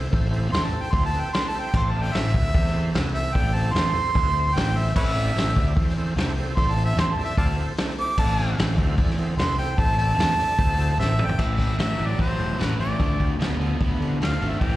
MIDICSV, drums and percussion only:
0, 0, Header, 1, 2, 480
1, 0, Start_track
1, 0, Key_signature, 0, "minor"
1, 0, Tempo, 402685
1, 136, Time_signature, 4, 2, 24, 8
1, 17600, End_track
2, 0, Start_track
2, 0, Title_t, "Drums"
2, 151, Note_on_c, 9, 36, 107
2, 157, Note_on_c, 9, 46, 82
2, 271, Note_off_c, 9, 36, 0
2, 276, Note_off_c, 9, 46, 0
2, 392, Note_on_c, 9, 46, 59
2, 511, Note_off_c, 9, 46, 0
2, 633, Note_on_c, 9, 46, 86
2, 651, Note_on_c, 9, 38, 120
2, 752, Note_off_c, 9, 46, 0
2, 770, Note_off_c, 9, 38, 0
2, 864, Note_on_c, 9, 46, 54
2, 983, Note_off_c, 9, 46, 0
2, 1104, Note_on_c, 9, 46, 81
2, 1107, Note_on_c, 9, 36, 101
2, 1223, Note_off_c, 9, 46, 0
2, 1226, Note_off_c, 9, 36, 0
2, 1352, Note_on_c, 9, 46, 57
2, 1471, Note_off_c, 9, 46, 0
2, 1587, Note_on_c, 9, 46, 75
2, 1604, Note_on_c, 9, 38, 117
2, 1706, Note_off_c, 9, 46, 0
2, 1724, Note_off_c, 9, 38, 0
2, 1831, Note_on_c, 9, 46, 58
2, 1950, Note_off_c, 9, 46, 0
2, 2068, Note_on_c, 9, 49, 96
2, 2069, Note_on_c, 9, 36, 103
2, 2187, Note_off_c, 9, 49, 0
2, 2189, Note_off_c, 9, 36, 0
2, 2307, Note_on_c, 9, 46, 60
2, 2427, Note_off_c, 9, 46, 0
2, 2546, Note_on_c, 9, 46, 74
2, 2564, Note_on_c, 9, 38, 111
2, 2665, Note_off_c, 9, 46, 0
2, 2683, Note_off_c, 9, 38, 0
2, 2794, Note_on_c, 9, 36, 103
2, 2798, Note_on_c, 9, 46, 50
2, 2913, Note_off_c, 9, 36, 0
2, 2917, Note_off_c, 9, 46, 0
2, 3034, Note_on_c, 9, 36, 110
2, 3035, Note_on_c, 9, 46, 73
2, 3154, Note_off_c, 9, 36, 0
2, 3154, Note_off_c, 9, 46, 0
2, 3176, Note_on_c, 9, 38, 36
2, 3271, Note_on_c, 9, 46, 56
2, 3295, Note_off_c, 9, 38, 0
2, 3390, Note_off_c, 9, 46, 0
2, 3504, Note_on_c, 9, 46, 83
2, 3522, Note_on_c, 9, 38, 113
2, 3623, Note_off_c, 9, 46, 0
2, 3641, Note_off_c, 9, 38, 0
2, 3752, Note_on_c, 9, 46, 62
2, 3871, Note_off_c, 9, 46, 0
2, 3995, Note_on_c, 9, 36, 104
2, 4002, Note_on_c, 9, 46, 74
2, 4114, Note_off_c, 9, 36, 0
2, 4121, Note_off_c, 9, 46, 0
2, 4242, Note_on_c, 9, 46, 61
2, 4361, Note_off_c, 9, 46, 0
2, 4465, Note_on_c, 9, 46, 81
2, 4483, Note_on_c, 9, 38, 121
2, 4584, Note_off_c, 9, 46, 0
2, 4602, Note_off_c, 9, 38, 0
2, 4714, Note_on_c, 9, 46, 65
2, 4833, Note_off_c, 9, 46, 0
2, 4949, Note_on_c, 9, 46, 87
2, 4950, Note_on_c, 9, 36, 103
2, 5068, Note_off_c, 9, 46, 0
2, 5069, Note_off_c, 9, 36, 0
2, 5194, Note_on_c, 9, 46, 61
2, 5313, Note_off_c, 9, 46, 0
2, 5435, Note_on_c, 9, 46, 78
2, 5453, Note_on_c, 9, 38, 115
2, 5555, Note_off_c, 9, 46, 0
2, 5572, Note_off_c, 9, 38, 0
2, 5675, Note_on_c, 9, 46, 63
2, 5794, Note_off_c, 9, 46, 0
2, 5909, Note_on_c, 9, 36, 105
2, 5909, Note_on_c, 9, 49, 92
2, 6028, Note_off_c, 9, 36, 0
2, 6028, Note_off_c, 9, 49, 0
2, 6162, Note_on_c, 9, 46, 55
2, 6281, Note_off_c, 9, 46, 0
2, 6398, Note_on_c, 9, 46, 81
2, 6416, Note_on_c, 9, 38, 110
2, 6517, Note_off_c, 9, 46, 0
2, 6535, Note_off_c, 9, 38, 0
2, 6633, Note_on_c, 9, 36, 97
2, 6641, Note_on_c, 9, 46, 58
2, 6752, Note_off_c, 9, 36, 0
2, 6760, Note_off_c, 9, 46, 0
2, 6875, Note_on_c, 9, 36, 100
2, 6882, Note_on_c, 9, 46, 70
2, 6994, Note_off_c, 9, 36, 0
2, 7001, Note_off_c, 9, 46, 0
2, 7027, Note_on_c, 9, 38, 35
2, 7118, Note_on_c, 9, 46, 56
2, 7147, Note_off_c, 9, 38, 0
2, 7237, Note_off_c, 9, 46, 0
2, 7357, Note_on_c, 9, 46, 78
2, 7375, Note_on_c, 9, 38, 118
2, 7476, Note_off_c, 9, 46, 0
2, 7494, Note_off_c, 9, 38, 0
2, 7603, Note_on_c, 9, 46, 60
2, 7722, Note_off_c, 9, 46, 0
2, 7836, Note_on_c, 9, 36, 98
2, 7840, Note_on_c, 9, 46, 81
2, 7955, Note_off_c, 9, 36, 0
2, 7959, Note_off_c, 9, 46, 0
2, 8083, Note_on_c, 9, 46, 61
2, 8202, Note_off_c, 9, 46, 0
2, 8312, Note_on_c, 9, 46, 85
2, 8330, Note_on_c, 9, 38, 116
2, 8431, Note_off_c, 9, 46, 0
2, 8449, Note_off_c, 9, 38, 0
2, 8556, Note_on_c, 9, 46, 58
2, 8675, Note_off_c, 9, 46, 0
2, 8793, Note_on_c, 9, 36, 109
2, 8793, Note_on_c, 9, 46, 83
2, 8913, Note_off_c, 9, 36, 0
2, 8913, Note_off_c, 9, 46, 0
2, 9029, Note_on_c, 9, 46, 57
2, 9149, Note_off_c, 9, 46, 0
2, 9264, Note_on_c, 9, 46, 85
2, 9282, Note_on_c, 9, 38, 117
2, 9384, Note_off_c, 9, 46, 0
2, 9401, Note_off_c, 9, 38, 0
2, 9517, Note_on_c, 9, 46, 63
2, 9636, Note_off_c, 9, 46, 0
2, 9748, Note_on_c, 9, 49, 92
2, 9751, Note_on_c, 9, 36, 96
2, 9867, Note_off_c, 9, 49, 0
2, 9870, Note_off_c, 9, 36, 0
2, 9994, Note_on_c, 9, 46, 58
2, 10113, Note_off_c, 9, 46, 0
2, 10231, Note_on_c, 9, 46, 84
2, 10249, Note_on_c, 9, 38, 124
2, 10350, Note_off_c, 9, 46, 0
2, 10368, Note_off_c, 9, 38, 0
2, 10464, Note_on_c, 9, 46, 51
2, 10468, Note_on_c, 9, 36, 93
2, 10583, Note_off_c, 9, 46, 0
2, 10587, Note_off_c, 9, 36, 0
2, 10700, Note_on_c, 9, 46, 77
2, 10706, Note_on_c, 9, 36, 99
2, 10819, Note_off_c, 9, 46, 0
2, 10825, Note_off_c, 9, 36, 0
2, 10849, Note_on_c, 9, 38, 38
2, 10938, Note_on_c, 9, 46, 52
2, 10968, Note_off_c, 9, 38, 0
2, 11057, Note_off_c, 9, 46, 0
2, 11184, Note_on_c, 9, 46, 81
2, 11202, Note_on_c, 9, 38, 105
2, 11303, Note_off_c, 9, 46, 0
2, 11321, Note_off_c, 9, 38, 0
2, 11425, Note_on_c, 9, 46, 60
2, 11544, Note_off_c, 9, 46, 0
2, 11662, Note_on_c, 9, 36, 109
2, 11665, Note_on_c, 9, 46, 81
2, 11781, Note_off_c, 9, 36, 0
2, 11784, Note_off_c, 9, 46, 0
2, 11905, Note_on_c, 9, 46, 63
2, 12024, Note_off_c, 9, 46, 0
2, 12145, Note_on_c, 9, 46, 91
2, 12163, Note_on_c, 9, 38, 113
2, 12264, Note_off_c, 9, 46, 0
2, 12282, Note_off_c, 9, 38, 0
2, 12389, Note_on_c, 9, 46, 57
2, 12508, Note_off_c, 9, 46, 0
2, 12619, Note_on_c, 9, 36, 96
2, 12633, Note_on_c, 9, 46, 85
2, 12738, Note_off_c, 9, 36, 0
2, 12752, Note_off_c, 9, 46, 0
2, 12863, Note_on_c, 9, 46, 64
2, 12982, Note_off_c, 9, 46, 0
2, 13121, Note_on_c, 9, 38, 68
2, 13240, Note_off_c, 9, 38, 0
2, 13338, Note_on_c, 9, 45, 91
2, 13457, Note_off_c, 9, 45, 0
2, 13458, Note_on_c, 9, 43, 93
2, 13574, Note_on_c, 9, 49, 92
2, 13575, Note_on_c, 9, 36, 103
2, 13577, Note_off_c, 9, 43, 0
2, 13693, Note_off_c, 9, 49, 0
2, 13694, Note_off_c, 9, 36, 0
2, 13813, Note_on_c, 9, 36, 73
2, 13813, Note_on_c, 9, 46, 48
2, 13932, Note_off_c, 9, 36, 0
2, 13933, Note_off_c, 9, 46, 0
2, 14047, Note_on_c, 9, 46, 71
2, 14065, Note_on_c, 9, 38, 114
2, 14166, Note_off_c, 9, 46, 0
2, 14184, Note_off_c, 9, 38, 0
2, 14286, Note_on_c, 9, 46, 46
2, 14405, Note_off_c, 9, 46, 0
2, 14531, Note_on_c, 9, 36, 100
2, 14533, Note_on_c, 9, 46, 67
2, 14650, Note_off_c, 9, 36, 0
2, 14652, Note_off_c, 9, 46, 0
2, 14781, Note_on_c, 9, 46, 47
2, 14900, Note_off_c, 9, 46, 0
2, 15012, Note_on_c, 9, 46, 73
2, 15030, Note_on_c, 9, 38, 101
2, 15131, Note_off_c, 9, 46, 0
2, 15149, Note_off_c, 9, 38, 0
2, 15259, Note_on_c, 9, 46, 52
2, 15378, Note_off_c, 9, 46, 0
2, 15495, Note_on_c, 9, 36, 108
2, 15499, Note_on_c, 9, 46, 69
2, 15614, Note_off_c, 9, 36, 0
2, 15618, Note_off_c, 9, 46, 0
2, 15737, Note_on_c, 9, 36, 74
2, 15742, Note_on_c, 9, 46, 51
2, 15856, Note_off_c, 9, 36, 0
2, 15861, Note_off_c, 9, 46, 0
2, 15978, Note_on_c, 9, 46, 70
2, 15996, Note_on_c, 9, 38, 110
2, 16098, Note_off_c, 9, 46, 0
2, 16115, Note_off_c, 9, 38, 0
2, 16223, Note_on_c, 9, 46, 53
2, 16342, Note_off_c, 9, 46, 0
2, 16451, Note_on_c, 9, 46, 72
2, 16456, Note_on_c, 9, 36, 106
2, 16570, Note_off_c, 9, 46, 0
2, 16575, Note_off_c, 9, 36, 0
2, 16707, Note_on_c, 9, 46, 54
2, 16826, Note_off_c, 9, 46, 0
2, 16942, Note_on_c, 9, 46, 80
2, 16959, Note_on_c, 9, 38, 106
2, 17061, Note_off_c, 9, 46, 0
2, 17079, Note_off_c, 9, 38, 0
2, 17186, Note_on_c, 9, 46, 55
2, 17305, Note_off_c, 9, 46, 0
2, 17417, Note_on_c, 9, 36, 103
2, 17417, Note_on_c, 9, 46, 75
2, 17536, Note_off_c, 9, 36, 0
2, 17536, Note_off_c, 9, 46, 0
2, 17600, End_track
0, 0, End_of_file